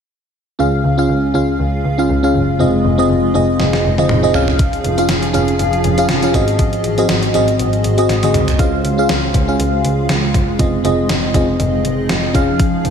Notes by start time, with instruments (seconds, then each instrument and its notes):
0.59 double bass C#2, fm electric piano C#3 C#4 F4 G#4 F5, ambient pad C#3 G#3 F4
0.84 double bass C#2
0.98 fm electric piano C#4 F4 G#4 F5
1.09 double bass C#2
1.34 double bass C#2, fm electric piano C#4 F4 G#4 F5
1.60 double bass C#2
1.85 double bass C#2
1.98 fm electric piano C#4 F4 G#4 F5
2.10 double bass C#2
2.23 fm electric piano C#4 F4 G#4 F5
2.35 double bass F#1
2.59 double bass F1, ambient pad F3 D#4 G#4, fm electric piano C4 F4 G#4 D#5
2.85 double bass F1
2.98 fm electric piano C4 F4 G#4 D#5
3.10 double bass F1
3.34 double bass F1, fm electric piano C4 F4 G#4 D#5
3.60 double bass F1, snare
3.73 snare
3.85 double bass F1
3.98 fm electric piano C4 F4 G#4 D#5, high tom
4.09 double bass F1, mid tom
4.23 fm electric piano C4 F4 G#4 D#5
4.34 double bass F1, fm electric piano C#4 F4 G#4 F5, ambient pad C#4, floor tom
4.48 floor tom
4.59 kick, closed hi-hat
4.73 closed hi-hat
4.84 double bass F1, closed hi-hat
4.98 fm electric piano C#4 F4 G#4 F5, closed hi-hat
5.09 double bass F1, snare, closed hi-hat
5.23 closed hi-hat
5.33 double bass F1, fm electric piano C#4 F4 G#4 F5, closed hi-hat
5.48 closed hi-hat
5.59 double bass F1, closed hi-hat
5.73 closed hi-hat
5.84 double bass F1, closed hi-hat
5.98 fm electric piano C#4 F4 G#4 F5, closed hi-hat
6.09 double bass F1, snare, closed hi-hat
6.23 fm electric piano C#4 F4 G#4 F5, closed hi-hat
6.34 double bass G#1, fm electric piano G#2 C4 F#4 G#4 D#5, ambient pad G#3 F#4 C5, kick, closed hi-hat
6.48 closed hi-hat
6.59 kick, closed hi-hat
6.73 closed hi-hat
6.84 double bass G#1, closed hi-hat
6.98 fm electric piano C4 F#4 G#4 D#5, closed hi-hat
7.09 double bass G#1, snare, closed hi-hat
7.23 closed hi-hat
7.34 double bass G#1, fm electric piano C4 F#4 G#4 D#5, closed hi-hat
7.48 closed hi-hat
7.59 double bass G#1, closed hi-hat
7.73 closed hi-hat
7.84 double bass G#1, closed hi-hat
7.98 fm electric piano C4 F#4 G#4 D#5, closed hi-hat
8.09 double bass G#1, snare, closed hi-hat
8.23 fm electric piano C4 F#4 G#4 D#5, closed hi-hat, high tom
8.34 double bass C2, closed hi-hat, mid tom
8.48 closed hi-hat, floor tom
8.59 double bass C#2, fm electric piano C#3 C#4 F4 G#4 F5, ambient pad C#3 G#3 F4, kick, closed hi-hat
8.84 double bass C#2, closed hi-hat
8.98 fm electric piano C#4 F4 G#4 F5
9.09 double bass C#2, snare, closed hi-hat
9.34 double bass C#2, kick, closed hi-hat
9.48 fm electric piano C#4 F4 G#4 F5
9.59 double bass C#2, closed hi-hat
9.84 double bass C#2, closed hi-hat
10.09 double bass C#2, snare, closed hi-hat
10.34 double bass F#1, kick, closed hi-hat
10.59 double bass F1, ambient pad F3 D#4 G#4, fm electric piano C4 F4 G#4 D#5, kick, closed hi-hat
10.84 double bass F1, fm electric piano C4 F4 G#4 D#5, closed hi-hat
11.09 double bass F1, snare, closed hi-hat
11.34 double bass F1, fm electric piano C4 F4 G#4 D#5, kick, closed hi-hat
11.60 double bass F1, closed hi-hat
11.84 double bass F1, closed hi-hat
12.09 double bass F1, snare, closed hi-hat
12.34 double bass F1, fm electric piano C#4 F4 G#4 F5, ambient pad C#4, kick, closed hi-hat
12.59 kick, closed hi-hat
12.85 double bass F1, closed hi-hat